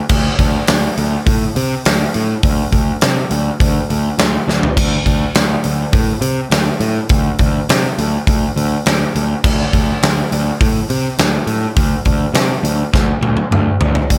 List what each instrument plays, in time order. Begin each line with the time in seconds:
0.09 picked electric bass D2, kick, crash
0.39 picked electric bass D2, kick, open hi-hat
0.67 picked electric bass D2, snare, open hi-hat
0.97 picked electric bass D2, open hi-hat
1.26 picked electric bass A2, kick, open hi-hat
1.56 picked electric bass C3, open hi-hat
1.85 picked electric bass D2, snare, open hi-hat
2.14 picked electric bass A2, open hi-hat
2.43 picked electric bass D2, kick, open hi-hat
2.72 picked electric bass D2, kick, open hi-hat
3.01 picked electric bass C3, snare, open hi-hat
3.31 picked electric bass D2, open hi-hat
3.60 picked electric bass D2, kick, open hi-hat
3.90 picked electric bass D2, open hi-hat
4.18 picked electric bass D2, snare, open hi-hat
4.48 picked electric bass D2, snare
4.63 floor tom
4.77 picked electric bass D2, kick, crash
5.06 picked electric bass D2, kick, open hi-hat
5.35 picked electric bass D2, snare, open hi-hat
5.64 picked electric bass D2, open hi-hat
5.93 picked electric bass A2, kick, open hi-hat
6.21 picked electric bass C3, open hi-hat
6.50 picked electric bass D2, snare, open hi-hat
6.80 picked electric bass A2, open hi-hat
7.09 picked electric bass D2, kick, open hi-hat
7.38 picked electric bass D2, kick, open hi-hat
7.69 picked electric bass C3, snare, open hi-hat
7.98 picked electric bass D2, open hi-hat
8.27 picked electric bass D2, kick, open hi-hat
8.56 picked electric bass D2, open hi-hat
8.86 picked electric bass D2, snare, open hi-hat
9.15 picked electric bass D2, open hi-hat
9.44 picked electric bass D2, kick, crash
9.73 picked electric bass D2, kick, open hi-hat
10.02 picked electric bass D2, snare, open hi-hat
10.32 picked electric bass D2, open hi-hat
10.61 picked electric bass A2, kick, open hi-hat
10.90 picked electric bass C3, open hi-hat
11.18 picked electric bass D2, snare, open hi-hat
11.46 picked electric bass A2, open hi-hat
11.76 picked electric bass D2, kick, open hi-hat
12.05 picked electric bass D2, kick, open hi-hat
12.34 picked electric bass C3, snare, open hi-hat
12.63 picked electric bass D2, open hi-hat
12.93 picked electric bass D2, kick, snare
13.21 picked electric bass D2, high tom
13.37 high tom
13.51 picked electric bass D2, mid tom
13.81 picked electric bass D2, floor tom
13.95 floor tom
14.10 picked electric bass D2, kick, closed hi-hat